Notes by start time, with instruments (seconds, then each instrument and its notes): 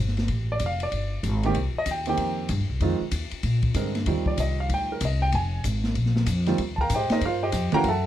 Already playing: upright bass G1
0.08 snare
0.17 snare, ride
0.28 upright bass A1, kick, ride
0.52 grand piano D5
0.59 upright bass F1, kick, hi-hat pedal, ride
0.66 grand piano F5
0.80 grand piano D5, ride
0.92 upright bass G1, kick, ride
1.23 upright bass G#1, kick, hi-hat pedal, ride
1.43 grand piano D#3 A#3 C4 G4, ride
1.54 upright bass C2, kick, ride
1.74 muted upright bass stroke
1.78 grand piano D#5
1.86 upright bass D#2, kick, hi-hat pedal, ride
1.91 grand piano G5
2.06 grand piano D#3 A#3 C4 G4 G5, ride
2.17 upright bass F2, kick, ride
2.49 upright bass G2, kick, hi-hat pedal, ride
2.60 upright bass D#2
2.70 upright bass C2
2.80 upright bass F2, grand piano D#3 G#3 C4 F4, kick, ride
3.01 muted upright bass stroke
3.11 upright bass D#2, kick, hi-hat pedal, ride
3.31 muted upright bass stroke, ride
3.43 upright bass A#2, kick, ride
3.62 kick, ride
3.74 upright bass G2, grand piano D3 G#3 C4 A#4, kick, hi-hat pedal, ride
3.95 snare, ride
4.06 upright bass D#2, grand piano D#3 G3 C4 F4, kick, ride
4.26 grand piano D5, kick
4.37 upright bass C2, grand piano D#5, kick, hi-hat pedal, ride
4.60 grand piano F5
4.69 upright bass D2, kick, ride
4.74 grand piano G5
4.92 grand piano A#4
5.01 upright bass C2, kick, hi-hat pedal, ride
5.05 grand piano D#5
5.22 grand piano G5
5.32 upright bass F1, grand piano G#5, kick, ride
5.64 upright bass G#1, kick, hi-hat pedal, ride
5.84 snare
5.95 upright bass A#1, kick, ride
6.06 snare
6.16 snare
6.26 upright bass F2, kick, hi-hat pedal, ride
6.46 grand piano D#3 G3 C4 F4, snare, ride
6.58 upright bass D#2, kick, ride
6.76 grand piano A5, kick
6.81 grand piano A#4 F5 G5 A#5
6.90 upright bass G#2, kick, hi-hat pedal, ride
6.94 grand piano G4 C5 D#5 G5
7.10 grand piano D#4 A#4 C5 D#5, muted upright bass stroke, snare, ride
7.21 upright bass G2, kick, ride
7.25 grand piano F4 A#4 C5 F5
7.43 grand piano G4 C5 D#5 G5
7.52 upright bass F2, kick, hi-hat pedal, ride
7.72 grand piano E3 A3 C#4 F#4 A#4 F5 G5 A#5, muted upright bass stroke, ride
7.84 upright bass F#2, kick, ride
7.88 grand piano A4 E5 F#5 A5